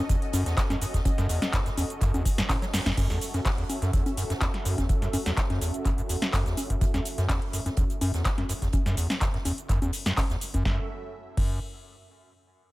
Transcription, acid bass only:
0.09 0.16 E2 medium
0.33 0.44 F#2 loud
0.46 0.55 E2 medium
0.70 0.76 F#2 medium
0.82 0.86 F#2 medium
0.94 1.00 E2 medium
1.18 1.28 F#2 loud
1.30 1.40 E2 medium
1.54 1.61 F#2 medium
1.66 1.70 F#2 medium
1.77 1.84 E2 medium
2.02 2.12 F#2 loud
2.14 2.24 E2 medium
2.38 2.42 F#2 loud
2.50 2.56 A2 medium
2.62 2.66 F#3 loud
2.74 2.80 F#2 medium
2.86 2.92 F#2 loud
2.97 3.08 F#2 loud
3.10 3.19 E2 medium
3.34 3.40 F#2 medium
3.45 3.50 F#2 medium
3.58 3.64 E2 medium
3.82 3.92 F#2 loud
3.94 4.04 E2 medium
4.17 4.24 F#2 medium
4.30 4.34 F#2 medium
4.42 4.49 E2 medium
4.66 4.76 F#2 loud
4.78 4.88 E2 medium
5.02 5.08 F#2 medium
5.13 5.18 F#2 medium
5.26 5.32 E2 medium
5.50 5.59 F#2 loud
5.61 5.72 E2 medium
5.86 5.92 F#2 medium
5.98 6.02 F#2 medium
6.10 6.16 E2 medium
6.34 6.44 F#2 loud
6.46 6.56 E2 medium
6.70 6.76 F#2 medium
6.81 6.86 F#2 medium
6.94 7.00 E2 medium
7.18 7.27 F#2 loud
7.29 7.40 E2 medium
7.53 7.60 F#2 medium
7.66 7.70 F#2 medium
7.77 7.84 E2 medium
8.01 8.12 F#2 loud
8.14 8.23 E2 medium
8.38 8.44 F#2 medium
8.49 8.54 F#2 medium
8.62 8.68 E2 medium
8.86 8.95 F#2 loud
8.98 9.08 E2 medium
9.21 9.28 F#2 medium
9.34 9.38 F#2 medium
9.45 9.52 E2 medium
9.69 9.80 F#2 loud
9.82 9.92 E2 medium
10.06 10.12 F#2 medium
10.17 10.22 F#2 medium
10.30 10.36 E2 medium
10.54 10.63 F#2 loud
10.65 10.79 F#2 medium
11.37 11.60 F#2 loud

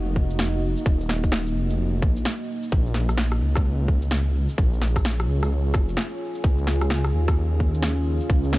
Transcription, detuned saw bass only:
0.00 0.75 F1 medium
0.86 1.54 D#1 medium
1.56 2.04 F1 medium
2.02 2.24 A#1 loud
2.72 3.41 A#1 medium
3.42 4.47 C#2 medium
4.58 5.27 A#1 medium
5.28 5.76 C#2 medium
5.74 5.96 F1 loud
6.44 7.12 C#2 medium
7.14 8.20 D#2 medium
8.29 8.59 C#2 loud

